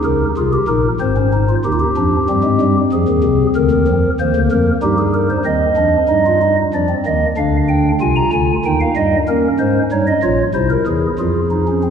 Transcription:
Already playing: D#4
0.04 C#2 C#3 A#4
0.37 C2 C3 F4 G#4
0.53 G4
0.68 A#1 A#2 D#4 A#4
1.00 G#1 G#2 C4 C5
1.16 C#4
1.33 D#4
1.49 F4
1.65 D#2 D#3 D#4 G4
1.73 F4
1.79 G4
1.97 F2 F3 D4
2.29 G2 G3 C4
2.44 G#2 G#3
2.61 G2 G3
2.93 F2 F3 G#4
3.08 D#2 D#3
3.24 C2 C3
3.56 D2 D3 A#4
3.71 D#2 D#3
3.88 F2 F3
4.20 D#2 D#3 A#3 C5
4.36 D2 D3
4.52 F2 F3 A#4
4.82 G2 G3 D#4 G4
4.98 G#4
5.14 A#4
5.30 C5
5.45 D#2 D#3 C4 D#5
5.77 F2 F3 D4
6.08 G2 G3 D#4
6.26 F4
6.42 D#4
6.74 F2 F3 D4 D5
6.89 C4
7.06 D#2 D#3 A#3 D#5
7.37 D2 D3 D4 F5
7.68 G5
8.01 C2 C3 F4 G#5
8.16 A#5
8.33 D2 D3 G#5
8.65 D#2 D#3 D#4 G5
8.81 F5
8.96 G2 G3 D#5
9.28 A#3 C#4 A#4
9.59 G#2 G#3 C5
9.92 G2 G3 D#4 C#5
10.07 D#5
10.23 A#1 A#2 F4 C#5
10.54 C2 C3 E4 C5
10.70 A#4
10.86 E2 E3 G#4
11.19 F2 F3 F4 G#4
11.51 D#4
11.67 C#4
11.83 C4

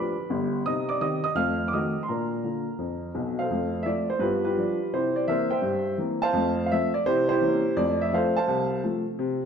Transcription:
Already playing: F3 D4 G4 B4 B5
0.30 G1 G2
0.66 C3 D#4 D#5 D#6
0.89 D5 D6
1.01 D#3 C4 G4 D#5 D#6
1.24 D#5 D#6
1.35 F2 A3 F5 F6
1.68 D6
1.73 D#3 A3 F#4 D#5 D#6
2.03 C6
2.08 A#2 D4 A#4 A#5
2.44 D3 A#3 F4
2.79 F2
3.15 B1 B2
3.39 A4 C5 F5
3.50 F2 A3
3.83 F3 A3 F4 D5 E5
4.10 C5
4.19 G2 B3 F4 G4 B4
4.45 F4 G4 B4
4.57 F3 G3 D4
4.94 C3 E4 G4 C5
5.16 D5
5.28 E3 A#3 C4 A#4 C5 E5
5.51 C5 E5 G5
5.62 G2
5.98 E3 A#3 C4
6.22 C5 F5 A5
6.33 F2 A3
6.66 F5
6.72 F3 A3 C4 E5
6.94 D5
7.06 C3 E4 G4 C5
7.29 E4 G4 C5
7.41 E3 A#3 C#4
7.77 F2 A3 D5
8.01 E5
8.13 F3 A3 C4 A4 C5 F5
8.36 C5 F5 A5
8.47 C2
8.84 F3 A3 C4
9.19 C3

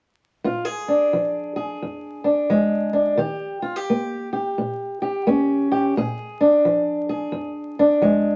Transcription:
0.44 A#2 F4
0.65 G#4
0.88 D4
1.13 F3
1.56 G#4
1.82 F2
2.24 D4
2.50 F3 G#3
2.93 D4
3.17 D#3 G4
3.62 F4
3.76 G4
3.90 A#3
4.33 G4
4.58 A#2
5.02 G4
5.27 A#3 C#4
5.72 G4
5.97 A#2 G#4
6.41 D4
6.65 F3
7.09 G#4
7.32 F2
7.79 D4
8.02 F3 G#3

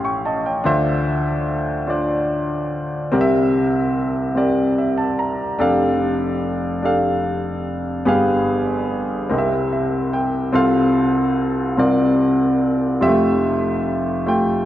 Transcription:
Already playing: A1 A2 C#4 G4 A4 F5 G5 C6
0.05 G5 C#6
0.25 D#5 A5
0.46 C#5 G5
0.64 D2 D3 D4 F4 C5 E5
1.87 D4 F4 C5 D5
3.12 C2 C3 C4 G4 A#4 D5
3.21 E5
4.35 C4 G4 A#4 D5
4.78 E5
4.98 A5
5.19 A#5
5.58 F1 F2 D4 G4 A4 F5
6.82 D4 G4 A4 F5
8.05 G1 G2 B3 G4 G#4 F5
9.29 C2 C3 C4 G4 A#4 D#5
9.38 E5
9.72 E5
10.13 G5
10.52 C2 C3 C4 F4 A4 F5
11.77 C2 C3 C4 F4 A#4 D5
13.01 F1 F2 G3 F4 G4 E5
13.08 A3
14.26 A3 F4 G4 G5

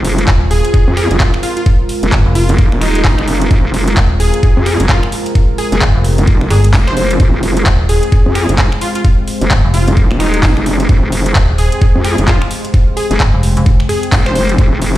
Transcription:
Already playing: F1 G#3 C4 F4 A#4
0.05 open hi-hat
0.18 closed hi-hat
0.28 D#1, kick, clap, closed hi-hat
0.51 G#4, open hi-hat
0.65 closed hi-hat
0.74 kick, closed hi-hat
0.88 F2
0.97 G#4, finger snap, open hi-hat
1.11 F1, closed hi-hat
1.20 kick, clap, closed hi-hat
1.34 finger snap
1.43 F4, open hi-hat
1.57 F4, closed hi-hat
1.66 kick, closed hi-hat
1.89 open hi-hat
2.03 F1, closed hi-hat
2.12 G1, kick, clap, closed hi-hat
2.26 F1
2.35 F4, open hi-hat
2.49 F1, closed hi-hat
2.58 kick, closed hi-hat
2.72 D#1, finger snap
2.81 D#4, finger snap, open hi-hat
2.95 closed hi-hat
3.05 kick, clap, open hi-hat
3.18 F1, finger snap
3.28 open hi-hat
3.41 closed hi-hat
3.51 F1, kick, closed hi-hat
3.74 open hi-hat
3.88 closed hi-hat
3.97 D#1, kick, clap, closed hi-hat
4.20 G#4, open hi-hat
4.34 closed hi-hat
4.43 kick, closed hi-hat
4.57 F2
4.66 G#4, finger snap, open hi-hat
4.80 F1, closed hi-hat
4.89 F4, kick, clap, closed hi-hat
5.03 finger snap
5.12 open hi-hat
5.26 closed hi-hat
5.35 kick, closed hi-hat
5.58 G#4, open hi-hat
5.72 F1 G#4, closed hi-hat
5.81 G1, kick, clap, closed hi-hat
5.95 F1
6.04 open hi-hat
6.18 F1, closed hi-hat
6.27 kick, closed hi-hat
6.41 finger snap
6.50 G1 G#4, finger snap, open hi-hat
6.64 closed hi-hat
6.74 F1, kick, clap, open hi-hat
6.87 C5, finger snap
6.97 C5, open hi-hat
7.11 closed hi-hat
7.20 F1 C5 G5, kick, closed hi-hat
7.43 open hi-hat
7.57 closed hi-hat
7.66 D#1, kick, clap, closed hi-hat
7.89 G#4, open hi-hat
8.03 closed hi-hat
8.12 kick, closed hi-hat
8.26 F2
8.35 G#4, finger snap, open hi-hat
8.49 F1, closed hi-hat
8.58 kick, clap, closed hi-hat
8.72 finger snap
8.81 F4, open hi-hat
8.95 F4, closed hi-hat
9.05 kick, closed hi-hat
9.28 open hi-hat
9.41 F1, closed hi-hat
9.51 G1, kick, clap, closed hi-hat
9.65 F1
9.74 F4, open hi-hat
9.88 F1, closed hi-hat
9.97 kick, closed hi-hat
10.11 D#1, finger snap
10.20 D#4, finger snap, open hi-hat
10.34 closed hi-hat
10.43 kick, clap, open hi-hat
10.57 F1, finger snap
10.66 open hi-hat
10.80 closed hi-hat
10.89 F1, kick, closed hi-hat
11.12 open hi-hat
11.26 closed hi-hat
11.35 D#1, kick, clap, closed hi-hat
11.58 G#4, open hi-hat
11.72 closed hi-hat
11.81 kick, closed hi-hat
11.95 F2
12.04 G#4, finger snap, open hi-hat
12.18 F1, closed hi-hat
12.28 F4, kick, clap, closed hi-hat
12.42 finger snap
12.51 open hi-hat
12.65 closed hi-hat
12.74 kick, closed hi-hat
12.97 G#4, open hi-hat
13.11 F1 G#4, closed hi-hat
13.20 G1, kick, clap, closed hi-hat
13.34 F1
13.43 open hi-hat
13.57 F1, closed hi-hat
13.66 kick, closed hi-hat
13.80 finger snap
13.89 G#4, finger snap, open hi-hat
14.03 closed hi-hat
14.12 F1, kick, clap, open hi-hat
14.26 C5, finger snap
14.35 C5, open hi-hat
14.49 closed hi-hat
14.58 F1 A#4, kick, closed hi-hat
14.82 open hi-hat

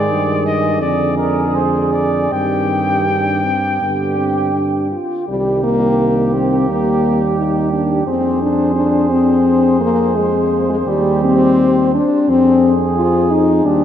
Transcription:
Already playing: G#2 D#3 G#3 G#4 D5
0.11 G2
0.46 D#5
0.81 F2 D3 G#3 G#4 D5
1.17 A#4
1.55 C5
1.93 D5
2.31 G2 D#3 C4 G4 G5
3.06 D4
3.44 C4
3.81 G2 D3 B3 G4
4.18 C4
4.55 D4
4.92 F4
5.28 C2 D#3 G3 G4
5.64 A#3
6.34 C4
6.69 D#2 G3 A#3
7.38 D#4
7.73 D4
8.06 F2 F3 C4 G#4 C5
8.42 D4
8.76 D4
9.10 C4
9.81 A#3
10.16 G#3
10.69 G#3
10.87 D#2 G3 G4
11.24 C4
11.95 D4
12.29 F2 F3 C4 G#4
12.97 F4
13.31 D#4
13.64 D#2 G3 D4 G4 C5

